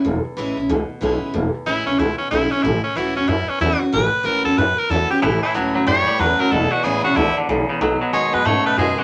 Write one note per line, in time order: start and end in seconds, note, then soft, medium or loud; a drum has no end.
0.05 0.24 E1 medium
0.05 0.67 E2 medium
0.24 muted upright bass stroke medium
0.37 0.56 A1 medium
0.37 0.56 E3 loud
0.37 0.57 G#3 medium
0.37 0.57 C#4 loud
0.37 0.56 E4 loud
0.57 0.68 B1 loud
0.57 0.70 C#4 medium
0.57 0.69 E4 medium
0.69 0.88 C#2 loud
0.69 1.32 B2 medium
0.89 muted upright bass stroke medium
1.01 1.21 B1 loud
1.01 1.32 E3 medium
1.01 1.33 G#3 medium
1.01 1.33 C#4 medium
1.01 1.33 E4 medium
1.22 muted upright bass stroke medium
1.34 1.53 E1 medium
1.34 1.96 E2 loud
1.54 muted upright bass stroke medium
1.66 1.86 A1 medium
1.66 1.86 E3 medium
1.66 1.86 G#3 loud
1.66 1.87 C#4 loud
1.66 1.86 E4 loud
1.66 1.85 E4 loud
1.86 1.98 B1 medium
1.86 2.00 C#4 medium
1.86 1.99 C#4 medium
1.86 1.98 E4 medium
1.99 2.18 C#2 medium
1.99 2.61 B2 medium
1.99 2.17 E4 medium
2.18 2.30 C#4 medium
2.18 muted upright bass stroke medium
2.31 2.51 B1 medium
2.31 2.51 E3 medium
2.31 2.51 G#3 medium
2.31 2.51 C#4 medium
2.31 2.52 E4 loud
2.31 2.51 E4 medium
2.51 2.64 C#4 loud
2.51 2.65 C#4 medium
2.51 2.63 E4 medium
2.51 muted upright bass stroke medium
2.63 2.83 A1 loud
2.63 3.26 A2 medium
2.63 2.83 E4 loud
2.83 2.98 C#4 medium
2.83 muted upright bass stroke medium
2.96 3.15 C#2 loud
2.96 3.15 E3 medium
2.96 3.16 A3 loud
2.96 3.16 C#4 medium
2.96 3.16 E4 loud
2.96 3.14 F#4 loud
3.16 3.28 E2 medium
3.16 3.30 C#4 medium
3.16 3.29 C#4 soft
3.16 3.28 F#4 medium
3.28 3.90 E2 medium
3.28 3.47 F#2 medium
3.28 3.50 E4 medium
3.48 3.60 C#4 medium
3.48 muted upright bass stroke medium
3.60 3.80 E2 medium
3.60 3.80 E3 medium
3.60 3.80 A3 medium
3.60 3.80 C#4 medium
3.60 3.80 E4 medium
3.60 3.78 F#4 medium
3.79 3.93 C#4 medium
3.79 3.92 F#4 medium
3.79 muted upright bass stroke medium
3.92 4.12 A1 medium
3.92 4.55 A2 medium
3.92 4.26 B4 loud
4.23 4.44 C#2 medium
4.23 4.44 E3 loud
4.23 4.44 A3 loud
4.23 4.45 C#4 loud
4.23 4.43 F#4 loud
4.23 4.44 A#4 loud
4.44 4.57 E2 loud
4.44 4.58 C#4 medium
4.44 4.57 F#4 medium
4.44 4.59 A4 loud
4.57 5.20 E2 medium
4.57 4.77 F#2 medium
4.57 4.80 B4 loud
4.78 4.92 A#4 loud
4.78 muted upright bass stroke medium
4.89 5.09 E2 medium
4.89 5.09 E3 medium
4.89 5.10 A3 medium
4.89 5.10 C#4 medium
4.89 5.08 F#4 medium
4.89 5.10 A4 loud
5.09 5.23 C#4 soft
5.09 5.21 F#4 medium
5.09 5.22 G4 loud
5.09 muted upright bass stroke medium
5.22 5.42 A1 loud
5.22 5.85 A2 medium
5.22 5.41 A2 medium
5.22 5.41 E3 loud
5.22 5.42 E4 medium
5.43 5.53 A2 medium
5.43 5.54 E3 medium
5.43 5.55 E4 loud
5.54 5.74 C#2 loud
5.54 5.73 A2 medium
5.54 5.74 E3 loud
5.54 5.73 F#3 medium
5.54 5.74 A3 loud
5.54 5.75 C#4 medium
5.54 5.73 F#4 loud
5.74 5.87 E2 medium
5.74 5.85 A2 medium
5.74 5.86 F#3 medium
5.74 5.88 C#4 medium
5.74 5.86 F#4 medium
5.87 6.49 E2 medium
5.87 6.06 F#2 medium
5.87 6.05 A2 medium
5.87 6.05 G3 medium
5.87 6.22 C#5 loud
6.06 6.18 A2 medium
6.06 6.18 G3 medium
6.06 muted upright bass stroke medium
6.19 6.39 E2 loud
6.19 6.38 A2 medium
6.19 6.38 E3 medium
6.19 6.38 F#3 loud
6.19 6.39 A3 medium
6.19 6.39 C#4 medium
6.19 6.38 F#4 medium
6.19 6.41 B4 loud
6.39 6.51 A2 medium
6.39 6.51 F#3 medium
6.39 6.52 C#4 medium
6.39 6.51 F#4 medium
6.39 6.53 A#4 loud
6.39 muted upright bass stroke medium
6.51 6.71 E1 loud
6.51 7.14 E2 medium
6.51 6.70 E2 medium
6.51 6.70 B2 medium
6.51 6.73 A4 loud
6.72 6.82 E2 medium
6.72 6.83 B2 medium
6.72 6.85 F#4 loud
6.72 muted upright bass stroke medium
6.84 7.03 A1 medium
6.84 7.02 E2 medium
6.84 7.02 C#3 loud
6.84 7.03 E3 loud
6.84 7.04 G#3 loud
6.84 7.04 C#4 loud
6.84 7.02 E4 loud
6.84 7.03 G#4 loud
7.04 7.16 B1 medium
7.04 7.15 E2 medium
7.04 7.15 C#3 medium
7.04 7.17 C#4 soft
7.04 7.16 E4 medium
7.04 7.17 F#4 loud
7.16 7.35 C#2 loud
7.16 7.34 E2 medium
7.16 7.48 G#2 medium
7.16 7.35 D3 loud
7.16 7.36 E4 loud
7.37 7.48 E2 medium
7.37 7.48 D3 medium
7.48 7.68 B1 medium
7.48 7.67 E2 medium
7.48 7.80 A2 medium
7.48 7.67 C#3 medium
7.68 7.80 E2 medium
7.68 7.80 C#3 medium
7.68 muted upright bass stroke medium
7.81 8.00 B1 loud
7.81 8.43 B2 loud
7.81 7.99 B2 medium
7.81 8.00 F#3 medium
8.01 8.12 B2 medium
8.01 8.12 F#3 medium
8.01 muted upright bass stroke medium
8.13 8.32 E2 loud
8.13 8.31 B2 medium
8.13 8.32 D#3 medium
8.13 8.31 G#3 loud
8.13 8.33 G#3 loud
8.13 8.33 B3 medium
8.13 8.31 F#4 loud
8.13 8.35 C#5 loud
8.33 8.45 F#2 loud
8.33 8.44 B2 medium
8.33 8.45 G#3 medium
8.33 8.46 B3 medium
8.33 8.45 F#4 medium
8.33 8.48 B4 loud
8.45 9.04 F#2 medium
8.45 8.65 G#2 medium
8.45 8.63 B2 medium
8.45 8.64 A3 loud
8.45 8.66 C#5 loud
8.65 8.77 B2 medium
8.65 8.77 A3 medium
8.65 8.78 B4 loud
8.65 muted upright bass stroke medium
8.77 8.97 F#2 loud
8.77 8.96 B2 medium
8.77 8.97 D#3 medium
8.77 8.96 G#3 medium
8.77 8.97 G#3 medium
8.77 8.98 B3 medium
8.77 8.96 F#4 medium
8.77 9.00 G#4 loud
8.97 9.04 B2 medium
8.97 9.04 G#3 medium
8.97 9.04 B3 medium
8.97 9.04 F#4 medium
8.97 9.04 F#4 loud
8.97 muted upright bass stroke medium